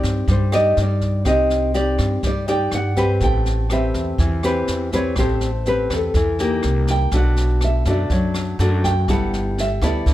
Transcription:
Already playing: C4 D#4 G4 D5
0.03 G2, kick, snare
0.28 G2 G3 C5, kick, snare
0.52 D#4 G4 D5 D#5, cross-stick, snare
0.77 G2, snare
0.82 D5
1.01 kick, snare
1.25 C2 C4 D#4 G4 D#5, kick, cross-stick, snare
1.50 snare
1.74 D#4 G4 D5, snare
1.98 G2, kick, cross-stick, snare
2.23 G2 G3, kick, snare
2.27 D5
2.48 D#4 G4 D5 G5, snare
2.71 G2 F#5, cross-stick, snare
2.96 C4 G4 B4, kick, snare
3.20 A1 A3 G5, kick, snare
3.46 snare
3.70 C4 G4 B4 E5, cross-stick, snare
3.94 E2, kick, snare
4.18 E2 E3, kick, snare
4.43 C4 G4 B4, cross-stick, snare
4.67 E2, snare
4.92 C4 G4 B4 C#5, kick, snare
5.16 A1 A3 C4 G4 C5, kick, cross-stick, snare
5.41 snare
5.65 C4 G4 B4, snare
5.90 E2 A4, kick, cross-stick, snare
6.14 E2 E3, kick, snare
6.39 A#3 D#4 G4, snare
6.63 C2, cross-stick, snare
6.87 G5, kick, snare
7.11 B1 B2 A3 D4 F#4, kick, snare
7.16 F#5
7.36 snare
7.61 E5, cross-stick, snare
7.85 F#2 A3 D4 F#4, kick, snare
7.90 D5
8.10 F#2 F#3, kick, snare
8.34 cross-stick, snare
8.59 F#2 A3 D4 F#4, snare
8.84 G5, kick, snare
9.08 G1 G3 B3 E4 A4 F#5, kick, cross-stick, snare
9.33 snare
9.58 E5, snare
9.82 D2 B3 E4 A4 D5, kick, cross-stick, snare
10.06 D2 D3, kick, snare

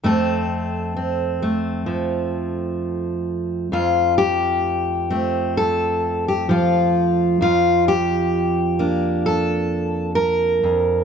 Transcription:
0.04 F2 A3 C4 A4
0.97 C4
1.43 A3
1.86 F3
3.72 F2 F4
4.18 G4
5.10 A3 C4
5.57 A4
6.28 G4
6.49 F3 F4
7.41 F2 F4
7.88 G4
8.79 A#3 D4
9.26 A4
10.15 A#4
10.63 F2

